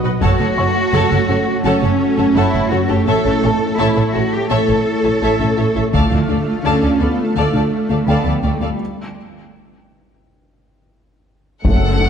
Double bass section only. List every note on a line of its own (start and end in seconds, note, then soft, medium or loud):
0.04 0.12 B1 medium
0.22 0.30 F#1 medium
0.40 0.47 F#1 soft
0.58 0.65 F#1 soft
0.94 1.01 F#1 medium
1.12 1.19 F#1 soft
1.29 1.36 F#1 medium
1.65 1.72 F#1 medium
1.82 1.90 F#1 soft
2.18 2.25 F#1 soft
2.36 2.43 F#1 medium
2.54 2.61 F#1 soft
2.73 2.80 F#1 soft
2.90 2.97 F#1 soft
3.07 3.14 A1 medium
3.25 3.32 A1 soft
3.43 3.50 A1 soft
3.79 3.86 A1 medium
3.96 4.04 A1 soft
4.14 4.22 A1 soft
4.50 4.58 A1 medium
4.68 4.75 A1 soft
5.04 5.11 A1 soft
5.22 5.29 A1 medium
5.40 5.47 A1 soft
5.58 5.65 A1 soft
5.76 5.83 A1 soft
5.94 6.01 D2 medium
6.11 6.19 D2 soft
6.29 6.36 D2 soft
6.65 6.72 D2 soft
6.83 6.90 D2 soft
7.01 7.08 D2 soft
7.37 7.44 D2 soft
7.54 7.61 D2 soft
7.90 7.97 D2 soft
8.07 8.14 D2 medium
8.25 8.32 D2 soft
8.43 8.50 D2 soft
8.61 8.68 D2 soft
11.65 12.10 F#1 medium